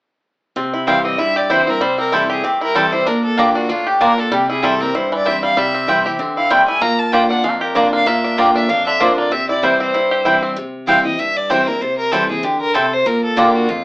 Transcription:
0.56 steel-string acoustic guitar C3, five-string banjo C4
0.74 five-string banjo E4
0.87 steel-string acoustic guitar E3 G3 C4 E4, five-string banjo G3, mandolin C4 E4 C5 G5, fiddle F5
1.05 five-string banjo C4, fiddle D#5
1.18 steel-string acoustic guitar G2, five-string banjo E4, fiddle E5
1.36 five-string banjo G4, fiddle D5
1.50 steel-string acoustic guitar E3 G3 C4 E4, mandolin C4 E4 C5 G5, five-string banjo E4, fiddle C5
1.67 five-string banjo C4, steel-string acoustic guitar C4 E4, fiddle A#4
1.81 steel-string acoustic guitar C3, five-string banjo G3, fiddle C5
1.98 five-string banjo C4, fiddle A#4
2.12 steel-string acoustic guitar E3 G3 C4 E4, mandolin C4 E4 C5 G5, five-string banjo E4, fiddle A4
2.30 five-string banjo G4, fiddle G#4
2.44 steel-string acoustic guitar G2, five-string banjo C4, fiddle G4
2.61 five-string banjo E4, fiddle A#4
2.75 steel-string acoustic guitar E3 G3 C4 E4, five-string banjo G3, mandolin C4 E4 C5 G5, fiddle A4
2.92 five-string banjo E4, fiddle C5
3.06 steel-string acoustic guitar A#2, five-string banjo D4, fiddle A#4
3.25 fiddle A4
3.37 steel-string acoustic guitar D3 A#3 D4 F4, mandolin A#3 F4 D5 A#5, five-string banjo A#3, fiddle G4
3.55 five-string banjo D4, fiddle F#4
3.69 steel-string acoustic guitar A2, five-string banjo D4, fiddle F4
3.87 five-string banjo G4, fiddle G4
4.01 steel-string acoustic guitar A#2, mandolin A#3 F4 D5 A#5, five-string banjo D4, fiddle A#4
4.18 five-string banjo D4, fiddle A4
4.32 steel-string acoustic guitar C3, five-string banjo G3, fiddle G4
4.50 five-string banjo E4, fiddle G#4
4.62 steel-string acoustic guitar E3 G3 C4 E4, five-string banjo G3, mandolin C4 E4 C5 G5, fiddle A4
4.80 five-string banjo C4, steel-string acoustic guitar C4 E4, fiddle A#4
4.95 steel-string acoustic guitar G2, five-string banjo E4, fiddle C5
5.12 five-string banjo E3, fiddle D5
5.25 steel-string acoustic guitar E3 G3 C4 E4, mandolin C4 E4 C5 G5, five-string banjo E4, fiddle E5
5.43 five-string banjo G3, fiddle F5
5.57 steel-string acoustic guitar C3, five-string banjo G3, fiddle E5
5.74 five-string banjo C4
5.87 steel-string acoustic guitar E3 G3 C4 E4, mandolin C4 E4 C5 G5, five-string banjo E4
6.04 steel-string acoustic guitar C4 E4, five-string banjo G4
6.19 steel-string acoustic guitar D3, five-string banjo C4
6.37 five-string banjo E4, fiddle F5
6.50 steel-string acoustic guitar A2, five-string banjo G3, mandolin C4 E4 C5 G5, fiddle G5
6.68 five-string banjo E4, fiddle G#5
6.81 steel-string acoustic guitar A#2, five-string banjo A#3, fiddle A#5
6.99 fiddle A5
7.12 steel-string acoustic guitar D3 A#3 D4 F4, mandolin A#3 F4 D5 A#5, five-string banjo G4, fiddle G5
7.29 five-string banjo D4, steel-string acoustic guitar D4 F4, fiddle F#5
7.44 steel-string acoustic guitar F2, five-string banjo G#3, fiddle F5
7.51 five-string banjo A#3
7.61 five-string banjo G4, fiddle A#4
7.75 steel-string acoustic guitar D3 A#3 D4 F4, mandolin A#3 F4 D5 A#5, five-string banjo D4, fiddle D5
7.93 five-string banjo A#3, fiddle F5
8.06 steel-string acoustic guitar A#2, five-string banjo A#3, fiddle E5
8.24 five-string banjo D4
8.37 steel-string acoustic guitar D3 A#3 D4 F4, mandolin A#3 F4 D5 A#5, five-string banjo A#3, fiddle G5
8.56 five-string banjo D4, fiddle E5
8.69 steel-string acoustic guitar F2, five-string banjo D4, fiddle F5
8.86 five-string banjo D3, fiddle E5
9.00 steel-string acoustic guitar D3 A#3 D4 F4, mandolin A#3 F4 D5 A#5, five-string banjo D4, fiddle C5
9.18 five-string banjo A#3, fiddle D5
9.32 steel-string acoustic guitar C3, five-string banjo C4, fiddle E5
9.49 five-string banjo E4, fiddle D5
9.62 steel-string acoustic guitar E3 G3 C4 E4, five-string banjo G3, mandolin C4 E4 C5 G5, fiddle C5
9.80 five-string banjo C4, fiddle C5
9.94 steel-string acoustic guitar G2, five-string banjo E4
10.11 five-string banjo G4
10.25 steel-string acoustic guitar E3 G3 C4 E4, mandolin C4 E4 C5 G5, five-string banjo E4
10.43 five-string banjo C4
10.56 steel-string acoustic guitar C3
10.87 steel-string acoustic guitar E3 G3 C4 E4, mandolin C4 E4 C5 G5, fiddle F5
11.05 steel-string acoustic guitar C4 E4, fiddle D#5
11.19 steel-string acoustic guitar G2, fiddle E5
11.36 fiddle D5
11.50 steel-string acoustic guitar E3 G3 C4 E4, mandolin C4 E4 C5 G5, fiddle C5
11.67 steel-string acoustic guitar C4 E4, fiddle A#4
11.81 steel-string acoustic guitar C3, fiddle C5
11.98 fiddle A#4
12.11 steel-string acoustic guitar E3 G3 C4 E4, mandolin C4 E4 C5 G5, fiddle A4
12.29 steel-string acoustic guitar C4 E4, fiddle G#4
12.43 steel-string acoustic guitar D3, fiddle G4
12.60 fiddle A#4
12.74 steel-string acoustic guitar C3, mandolin C4 E4 C5 G5, fiddle A4
12.93 fiddle C5
13.06 steel-string acoustic guitar A#2, fiddle A#4
13.24 fiddle A4
13.36 steel-string acoustic guitar D3 A#3 D4 F4, mandolin A#3 F4 D5 A#5, fiddle G4
13.55 fiddle F#4
13.69 steel-string acoustic guitar F2, fiddle F4

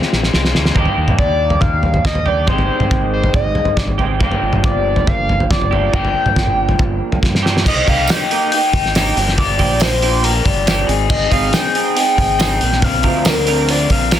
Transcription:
Already playing: clean electric guitar G#3 C4 F4, analog synth lead C5
0.02 snare
0.13 fingered electric bass A#1, snare
0.23 snare
0.32 fingered electric bass C2, clean electric guitar G#3 C4 F4, snare
0.45 snare
0.53 fingered electric bass D2, clean electric guitar G#3 C4 F4, snare
0.65 snare
0.75 fingered electric bass D#2, clean electric guitar D#3 A#3 D4 G4, kick, floor tom
0.85 floor tom
0.98 fingered electric bass D#2
1.08 floor tom, mid tom
1.19 fingered electric bass D#2, analog synth lead D5, kick
1.50 floor tom
1.60 fingered electric bass D#2, analog synth lead F5, kick, floor tom
1.83 floor tom
1.94 floor tom
2.05 fingered electric bass D#2, analog synth lead D#5, kick, snare, floor tom
2.15 floor tom
2.26 clean electric guitar A#3 D4 G4, analog synth lead D5, floor tom
2.47 fingered electric bass G#1, clean electric guitar D#3 G#3 C4 G4, analog synth lead C5, kick, floor tom
2.58 floor tom
2.80 floor tom, mid tom
2.91 fingered electric bass G#1, kick
3.13 analog synth lead C5
3.24 floor tom
3.34 fingered electric bass G#1, analog synth lead D#5, kick, floor tom
3.55 floor tom
3.65 floor tom
3.77 fingered electric bass G#1, analog synth lead D5, kick, snare, floor tom
3.88 floor tom
3.98 clean electric guitar D#3 G#3 C4 G4, floor tom
4.19 fingered electric bass G1, clean electric guitar F3 A#3 D4 G4, kick, floor tom
4.32 floor tom
4.43 fingered electric bass G1
4.53 floor tom, mid tom
4.64 fingered electric bass G1, analog synth lead D5, kick
4.96 floor tom
5.07 fingered electric bass G1, analog synth lead F5, kick, floor tom
5.29 floor tom
5.40 floor tom
5.51 fingered electric bass G1, analog synth lead D5, kick, snare, floor tom
5.62 floor tom
5.71 clean electric guitar F3 A#3 D4 G4, floor tom
5.93 fingered electric bass G1, clean electric guitar F3 A#3 D4 G4, analog synth lead G5, kick, floor tom
6.05 floor tom
6.26 floor tom, mid tom
6.36 fingered electric bass G1, kick, snare
6.47 mid tom
6.69 floor tom
6.79 fingered electric bass G1, kick, floor tom
7.12 floor tom
7.23 fingered electric bass G2, kick, snare
7.35 snare
7.43 clean electric guitar F3 A#3 D4 G4, snare
7.57 snare
7.65 fingered electric bass C2, clean electric guitar A#3 D#4 G4, analog synth lead D#5, kick, crash
7.88 fingered electric bass C2, clean electric guitar A#3 D#4 G4, analog synth lead F5, kick, open hi-hat
8.07 clean electric guitar A#3 D#4 G4, analog synth lead G5, snare, open hi-hat, tambourine
8.31 clean electric guitar A#3 D#4 G4, open hi-hat
8.52 clean electric guitar A#3 D#4 G4, analog synth lead G5, open hi-hat
8.73 fingered electric bass G#1, clean electric guitar D#4 G4, kick, open hi-hat
8.86 snare
8.95 clean electric guitar A#3 D#4 G4, snare, open hi-hat, tambourine
9.16 fingered electric bass G1, clean electric guitar F3 A#3 D4 G4, open hi-hat
9.28 snare
9.38 clean electric guitar F3 A#3 D4 G4, analog synth lead D5, kick, open hi-hat
9.59 fingered electric bass A#1, clean electric guitar F3 A#3 D4 G4, kick, open hi-hat
9.80 clean electric guitar F3 A#3 D4 G4, analog synth lead C5, snare, open hi-hat, tambourine
10.02 clean electric guitar F3 A#3 D4 G4, open hi-hat
10.22 clean electric guitar F3 A#3 D4 G4, analog synth lead A#4, open hi-hat
10.43 fingered electric bass G1, clean electric guitar A#3 D4 G4, analog synth lead D5, kick, open hi-hat
10.65 clean electric guitar F3 A#3 D4 G4, snare, open hi-hat, tambourine
10.87 fingered electric bass G#1, clean electric guitar C4 D#4 G#4, open hi-hat
11.08 clean electric guitar C4 D#4 G#4, analog synth lead D#5, kick, crash
11.30 fingered electric bass G#1, clean electric guitar C4 D#4 G#4, analog synth lead F5, kick, open hi-hat
11.51 clean electric guitar C4 D#4 G#4, analog synth lead G5, snare, open hi-hat, tambourine
11.75 clean electric guitar C4 D#4 G#4, open hi-hat
11.95 clean electric guitar C4 D#4 G#4, analog synth lead G5, open hi-hat
12.17 fingered electric bass G#1, clean electric guitar D#4 G#4, kick, open hi-hat
12.40 clean electric guitar C4 D#4 G#4, snare, open hi-hat, tambourine
12.61 fingered electric bass A#1, clean electric guitar F3 C4 D4 A#4, open hi-hat
12.72 snare
12.82 clean electric guitar F3 C4 D4 A#4, analog synth lead F5, kick, open hi-hat
13.03 fingered electric bass D2, clean electric guitar F3 C4 D4 A#4, kick, open hi-hat
13.25 clean electric guitar F3 C4 D4 A#4, analog synth lead A#4, snare, open hi-hat, tambourine
13.47 clean electric guitar F3 C4 D4 A#4, open hi-hat
13.69 clean electric guitar F3 C4 D4 A#4, analog synth lead D5, open hi-hat
13.90 fingered electric bass A#1, clean electric guitar C4 D4 A#4, analog synth lead F5, kick, open hi-hat
14.11 clean electric guitar F3 C4 D4 A#4, snare, open hi-hat, tambourine

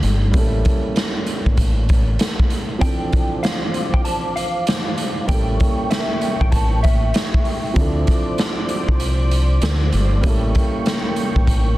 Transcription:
Already playing: grand piano F3 C4 D4 E4 A4
0.03 fingered electric bass G1, closed hi-hat
0.31 fingered electric bass A1, grand piano G3 A#3 C#4, kick, closed hi-hat
0.37 grand piano E4 A4
0.65 kick, closed hi-hat
0.96 snare, closed hi-hat
1.26 closed hi-hat
1.46 fingered electric bass A1, kick
1.57 kick, closed hi-hat
1.89 kick, closed hi-hat
2.19 snare, closed hi-hat
2.39 kick
2.50 closed hi-hat
2.79 grand piano F3 C4 D4, analog synth pad C5 F5 D6, clean electric guitar G5, kick, closed hi-hat
2.84 grand piano E3 A4
3.12 kick, closed hi-hat
3.43 clean electric guitar F5, snare, closed hi-hat
3.74 closed hi-hat
3.94 clean electric guitar G5, kick
4.04 clean electric guitar A5, closed hi-hat
4.36 clean electric guitar F5, closed hi-hat
4.67 snare, closed hi-hat
4.98 closed hi-hat
5.26 fingered electric bass A1, grand piano G3 A#3 C#4, analog synth pad A#3 G5 C#6, clean electric guitar G5, kick, closed hi-hat
5.32 grand piano E4 A4
5.60 kick, closed hi-hat
5.90 clean electric guitar E5, snare, closed hi-hat
6.21 closed hi-hat
6.41 fingered electric bass A1, clean electric guitar G5, kick
6.52 clean electric guitar A5, kick, closed hi-hat
6.83 clean electric guitar E5, kick, closed hi-hat
7.14 snare, closed hi-hat
7.34 kick
7.45 open hi-hat
7.74 fingered electric bass D2, grand piano F3 C4 D4, analog synth pad C5 D5 D6, kick, closed hi-hat
7.79 grand piano E4 A4
8.07 kick, closed hi-hat
8.38 snare, closed hi-hat
8.69 closed hi-hat
8.89 fingered electric bass C2, kick
9.00 closed hi-hat
9.31 closed hi-hat
9.62 fingered electric bass D2, snare, closed hi-hat
9.92 fingered electric bass G1, closed hi-hat
10.21 fingered electric bass A1, grand piano G3 A#3 C#4, analog synth pad A#3 G5 C#6, kick, closed hi-hat
10.26 grand piano E4 A4
10.55 kick, closed hi-hat
10.86 snare, closed hi-hat
11.16 closed hi-hat
11.36 fingered electric bass A1, kick
11.47 kick, closed hi-hat

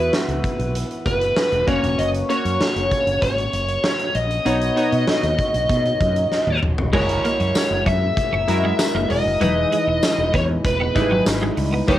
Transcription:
Already playing: synth keys E3 B3 E4 F#4 E5
0.13 snare
0.28 fretless electric bass C#2, closed hi-hat
0.44 kick, closed hi-hat
0.59 fretless electric bass B1, closed hi-hat
0.75 closed hi-hat
0.91 closed hi-hat
1.06 fretless electric bass F#1, lead electric guitar B4, kick, closed hi-hat
1.21 closed hi-hat
1.37 snare
1.52 fretless electric bass E1, closed hi-hat
1.67 fretless electric bass F#1, synth keys A#3 C#4 F#4 C#5, lead electric guitar C#5, kick, closed hi-hat
1.83 fretless electric bass E1, closed hi-hat
1.99 fretless electric bass F#1, lead electric guitar D#5, closed hi-hat
2.14 closed hi-hat
2.29 synth keys A#3 C#4 F#4 C#5, lead electric guitar C#5, closed hi-hat
2.45 fretless electric bass F#2, closed hi-hat
2.61 snare
2.76 fretless electric bass F#1, closed hi-hat
2.91 kick, closed hi-hat
3.07 fretless electric bass F#1, closed hi-hat
3.22 fretless electric bass G#1, lead electric guitar C#5, kick, closed hi-hat
3.38 closed hi-hat
3.53 fretless electric bass F#1, closed hi-hat
3.68 closed hi-hat
3.84 snare
3.99 closed hi-hat
4.15 fretless electric bass A#1, lead electric guitar D#5, closed hi-hat
4.30 closed hi-hat
4.45 fretless electric bass B1, synth keys B2 B3 D#4 F#4 C#5, closed hi-hat
4.61 closed hi-hat
4.76 synth keys B3 D#4 F#4 C#5, closed hi-hat
4.92 fretless electric bass B2, closed hi-hat
5.08 snare
5.23 fretless electric bass D#2, closed hi-hat
5.38 kick, closed hi-hat
5.54 fretless electric bass B1, closed hi-hat
5.69 fretless electric bass B2, kick, closed hi-hat
5.85 closed hi-hat
6.00 fretless electric bass F#2, kick, closed hi-hat
6.16 closed hi-hat
6.32 snare
6.47 fretless electric bass D#2, high tom
6.62 fretless electric bass F#1, mid tom
6.78 fretless electric bass E1, floor tom
6.93 fretless electric bass F#1, synth keys G#3 E4 F#4 A#4, clean electric guitar G#3, lead electric guitar C#5, kick, crash
7.09 closed hi-hat
7.24 clean electric guitar A#3, closed hi-hat
7.40 fretless electric bass F#2, muted clean electric guitar stroke, closed hi-hat
7.55 snare, closed hi-hat, tambourine
7.71 fretless electric bass F#1
7.86 fretless electric bass F#2, clean electric guitar C#4, lead electric guitar E5, kick, closed hi-hat
8.17 kick, closed hi-hat
8.32 fretless electric bass F#1, clean electric guitar C#4
8.48 fretless electric bass F#2, synth keys G#3 E4 F#4 A#4, muted clean electric guitar stroke, closed hi-hat
8.64 clean electric guitar G#3
8.79 muted clean electric guitar stroke, snare, closed hi-hat, tambourine
8.94 fretless electric bass F#1, clean electric guitar A#3
9.10 fretless electric bass E1, clean electric guitar G#3, lead electric guitar D#5, open hi-hat
9.25 fretless electric bass F#1
9.40 fretless electric bass E1, synth keys E3 G#3 D#4 E4 B4, clean electric guitar F#3, closed hi-hat
9.72 clean electric guitar G#3, closed hi-hat
9.87 fretless electric bass E1, muted clean electric guitar stroke
10.03 snare, closed hi-hat, tambourine
10.18 fretless electric bass E1
10.34 fretless electric bass E2, clean electric guitar B3, lead electric guitar C#5, kick, closed hi-hat
10.65 fretless electric bass E1, lead electric guitar B4, kick, closed hi-hat
10.80 clean electric guitar B3
10.95 fretless electric bass G#1, synth keys G3 D#4 E4 B4, muted clean electric guitar stroke, kick, closed hi-hat
11.01 synth keys G#3
11.11 clean electric guitar F#3
11.26 fretless electric bass G#1, snare, closed hi-hat, tambourine
11.42 clean electric guitar G#3
11.57 fretless electric bass C#2, muted clean electric guitar stroke, open hi-hat
11.73 clean electric guitar B3
11.88 fretless electric bass D#2, synth keys D#3 A#3 D#4 G4 C#5, clean electric guitar G3, lead electric guitar C#5, kick, closed hi-hat

